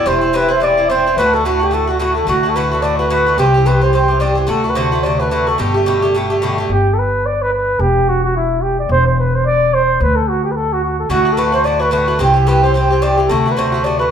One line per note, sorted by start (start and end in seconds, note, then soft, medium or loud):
0.06 1.15 E1 medium
0.06 0.22 G2 medium
0.06 0.22 E3 medium
0.06 0.21 C4 medium
0.06 0.20 E4 medium
0.06 0.37 C5 loud
0.21 0.33 E3 soft
0.21 0.34 C4 soft
0.21 0.34 E4 medium
0.33 0.50 G2 medium
0.33 0.50 E3 medium
0.33 0.48 C4 medium
0.33 0.47 E4 medium
0.33 0.52 B4 medium
0.48 0.60 E3 soft
0.48 0.62 C4 soft
0.48 0.61 E4 medium
0.48 0.62 C5 loud
0.60 0.77 G2 medium
0.60 0.78 E3 medium
0.60 0.77 C4 medium
0.60 0.76 E4 medium
0.60 0.88 D5 loud
0.77 0.88 E3 soft
0.77 0.89 C4 soft
0.77 0.89 E4 medium
0.90 1.05 G2 medium
0.90 1.06 E3 medium
0.90 1.06 C4 medium
0.90 1.05 E4 medium
0.90 1.15 C5 loud
1.06 1.18 E3 soft
1.06 1.18 C4 medium
1.06 1.18 E4 soft
1.17 2.25 D2 medium
1.17 1.33 A2 medium
1.17 1.34 D3 medium
1.17 1.34 A3 medium
1.17 1.32 F#4 medium
1.17 1.35 B4 loud
1.33 1.45 D3 soft
1.33 1.45 A3 soft
1.33 1.45 F#4 medium
1.33 1.45 A4 loud
1.45 1.61 A2 medium
1.45 1.61 D3 medium
1.45 1.60 A3 medium
1.45 1.63 F#4 medium
1.45 1.58 F#4 medium
1.60 1.71 D3 soft
1.60 1.72 A3 soft
1.60 1.72 F#4 soft
1.60 1.75 G4 medium
1.71 1.88 A2 medium
1.71 1.88 D3 medium
1.71 1.88 A3 medium
1.71 1.86 F#4 medium
1.71 1.89 A4 medium
1.87 1.99 D3 soft
1.87 2.00 A3 soft
1.87 2.00 F#4 soft
1.87 1.99 F#4 medium
1.99 2.16 A2 medium
1.99 2.16 D3 medium
1.99 2.15 A3 medium
1.99 2.15 F#4 medium
1.99 2.13 F#4 medium
2.14 2.27 D3 soft
2.14 2.27 A3 soft
2.14 2.27 F#4 soft
2.14 2.27 A4 medium
2.27 3.36 D2 medium
2.27 2.43 A2 medium
2.27 2.44 D3 medium
2.27 2.44 A3 medium
2.27 2.50 F#4 loud
2.27 2.42 F#4 medium
2.43 2.55 D3 soft
2.43 2.56 A3 soft
2.43 2.55 F#4 medium
2.49 2.57 A4 medium
2.56 2.71 A2 medium
2.56 2.72 D3 medium
2.56 2.72 A3 medium
2.56 2.70 F#4 medium
2.56 2.84 B4 medium
2.71 2.82 D3 medium
2.71 2.83 A3 medium
2.71 2.83 F#4 soft
2.82 2.98 A2 medium
2.82 2.99 D3 medium
2.82 2.99 A3 medium
2.82 2.98 F#4 medium
2.82 2.98 D5 loud
2.98 3.09 D3 soft
2.98 3.10 A3 soft
2.98 3.11 F#4 medium
2.98 3.09 B4 medium
3.10 3.26 A2 medium
3.10 3.26 D3 medium
3.10 3.27 A3 medium
3.10 3.25 F#4 medium
3.10 3.36 B4 loud
3.27 3.39 D3 soft
3.27 3.39 A3 soft
3.27 3.38 F#4 medium
3.38 4.46 C2 medium
3.38 3.54 G2 medium
3.38 3.54 E3 medium
3.38 3.54 C4 medium
3.38 3.68 G4 loud
3.38 3.53 G4 medium
3.54 3.65 E3 soft
3.54 3.66 C4 soft
3.54 3.66 G4 medium
3.66 3.82 G2 medium
3.66 3.82 E3 medium
3.66 3.82 C4 medium
3.66 3.80 G4 medium
3.66 3.84 B4 medium
3.81 3.92 E3 soft
3.81 3.94 C4 soft
3.81 3.93 G4 medium
3.81 3.93 C5 medium
3.93 4.09 G2 medium
3.93 4.09 E3 medium
3.93 4.09 C4 medium
3.93 4.07 G4 medium
3.93 4.19 C5 loud
4.08 4.19 E3 soft
4.08 4.20 C4 soft
4.08 4.20 G4 soft
4.20 4.36 G2 medium
4.20 4.37 E3 medium
4.20 4.36 C4 medium
4.20 4.34 G4 medium
4.20 4.35 D5 medium
4.35 4.47 E3 soft
4.35 4.47 C4 soft
4.35 4.48 G4 medium
4.47 5.56 D2 medium
4.47 4.63 C3 medium
4.47 4.64 D3 medium
4.47 4.64 A3 medium
4.47 4.63 F#4 medium
4.47 4.71 A4 loud
4.64 4.75 D3 soft
4.64 4.76 A3 soft
4.64 4.76 F#4 soft
4.69 4.77 B4 medium
4.75 4.92 C3 medium
4.75 4.92 D3 medium
4.75 4.92 A3 medium
4.75 4.91 F#4 medium
4.75 5.05 C5 medium
4.92 5.03 D3 soft
4.92 5.04 A3 medium
4.92 5.04 F#4 medium
5.03 5.19 C3 medium
5.03 5.20 D3 medium
5.03 5.20 A3 medium
5.03 5.18 F#4 medium
5.03 5.21 D5 medium
5.19 5.30 D3 soft
5.19 5.31 A3 soft
5.19 5.31 F#4 soft
5.19 5.30 B4 medium
5.30 5.47 C3 medium
5.30 5.47 D3 medium
5.30 5.47 A3 medium
5.30 5.46 F#4 medium
5.30 5.49 B4 medium
5.47 5.58 D3 soft
5.47 5.58 A3 soft
5.47 5.59 F#4 medium
5.47 5.60 A4 medium
5.58 6.67 G1 medium
5.58 5.74 B2 medium
5.58 5.75 D3 medium
5.58 5.75 A3 medium
5.58 6.42 G4 medium
5.58 5.73 G4 medium
5.74 5.86 D3 soft
5.74 5.87 A3 soft
5.74 5.86 G4 medium
5.86 6.02 B2 medium
5.86 6.03 D3 medium
5.86 6.02 A3 medium
5.86 6.01 G4 medium
6.02 6.14 D3 medium
6.02 6.15 A3 soft
6.02 6.14 G4 medium
6.14 6.30 B2 medium
6.14 6.30 D3 medium
6.14 6.30 A3 medium
6.14 6.29 G4 medium
6.30 6.42 D3 soft
6.30 6.42 A3 medium
6.30 6.42 G4 medium
6.42 6.58 B2 medium
6.42 6.58 D3 medium
6.42 6.58 A3 medium
6.42 6.57 G4 medium
6.58 6.71 D3 soft
6.58 6.70 A3 medium
6.58 6.70 G4 medium
6.69 7.77 G1 medium
6.69 6.95 G4 loud
6.93 7.00 A4 medium
6.99 7.27 B4 medium
7.26 7.43 D5 loud
7.42 7.52 B4 loud
7.53 7.81 B4 loud
7.79 8.87 E1 medium
7.79 8.10 G4 loud
8.08 8.23 F#4 medium
8.24 8.34 F#4 loud
8.36 8.64 E4 medium
8.62 8.78 G4 loud
8.79 8.89 D5 medium
8.89 9.97 E1 medium
8.89 9.05 C5 loud
9.07 9.17 C5 medium
9.19 9.36 B4 medium
9.35 9.45 C5 medium
9.46 9.75 D5 loud
9.74 10.01 C5 loud
10.00 11.08 D2 medium
10.00 10.17 B4 loud
10.15 10.30 A4 medium
10.28 10.43 F#4 medium
10.44 10.53 G4 medium
10.51 10.74 A4 medium
10.51 10.56 B4 medium
10.72 10.83 F#4 medium
10.84 10.98 F#4 medium
10.99 11.12 A4 medium
11.09 12.17 D2 medium
11.09 11.26 A2 medium
11.09 11.26 D3 medium
11.09 11.25 A3 medium
11.09 11.34 F#4 loud
11.09 11.24 F#4 medium
11.25 11.36 D3 soft
11.25 11.37 A3 soft
11.25 11.37 F#4 soft
11.32 11.39 A4 medium
11.37 11.53 A2 medium
11.37 11.53 D3 medium
11.37 11.53 A3 medium
11.37 11.51 F#4 medium
11.37 11.53 B4 medium
11.52 11.64 D3 soft
11.52 11.65 A3 medium
11.52 11.64 F#4 medium
11.52 11.66 C5 loud
11.64 11.80 A2 medium
11.64 11.81 D3 medium
11.64 11.80 A3 medium
11.64 11.78 F#4 medium
11.64 11.82 D5 loud
11.79 11.91 D3 soft
11.79 11.92 A3 soft
11.79 11.92 F#4 medium
11.79 11.92 B4 medium
11.91 12.08 A2 medium
11.91 12.08 D3 medium
11.91 12.08 A3 medium
11.91 12.07 F#4 medium
11.91 12.18 B4 medium
12.08 12.19 D3 soft
12.08 12.20 A3 soft
12.08 12.20 F#4 medium
12.19 13.27 C2 medium
12.19 12.35 G2 medium
12.19 12.35 E3 medium
12.19 12.34 C4 medium
12.19 12.49 G4 medium
12.19 12.32 G4 medium
12.34 12.47 E3 soft
12.34 12.47 C4 soft
12.34 12.46 G4 medium
12.47 12.63 G2 medium
12.47 12.63 E3 medium
12.47 12.64 C4 medium
12.47 12.62 G4 medium
12.47 12.64 B4 medium
12.62 12.74 E3 soft
12.62 12.75 C4 soft
12.62 12.75 G4 medium
12.62 12.73 C5 loud
12.74 12.90 G2 medium
12.74 12.91 E3 medium
12.74 12.91 C4 medium
12.74 12.89 G4 medium
12.74 13.04 C5 medium
12.90 13.01 E3 soft
12.90 13.02 C4 medium
12.90 13.02 G4 soft
13.02 13.18 G2 medium
13.02 13.18 E3 medium
13.02 13.17 C4 medium
13.02 13.16 G4 medium
13.02 13.18 D5 loud
13.17 13.30 E3 soft
13.17 13.30 C4 soft
13.17 13.29 G4 medium
13.28 14.11 D2 medium
13.28 13.45 C3 medium
13.28 13.46 D3 medium
13.28 13.46 A3 medium
13.28 13.44 F#4 medium
13.28 13.53 A4 medium
13.46 13.56 D3 soft
13.46 13.57 A3 soft
13.46 13.57 F#4 soft
13.51 13.59 B4 medium
13.57 13.73 C3 medium
13.57 13.73 D3 medium
13.57 13.73 A3 medium
13.57 13.71 F#4 medium
13.57 13.86 C5 medium
13.72 13.83 D3 soft
13.72 13.85 A3 medium
13.72 13.84 F#4 medium
13.84 14.00 C3 medium
13.84 14.00 D3 medium
13.84 14.00 A3 medium
13.84 13.98 F#4 medium
13.84 13.99 D5 medium
13.99 14.10 D3 soft
13.99 14.11 A3 soft
13.99 14.11 F#4 soft
13.99 14.10 B4 medium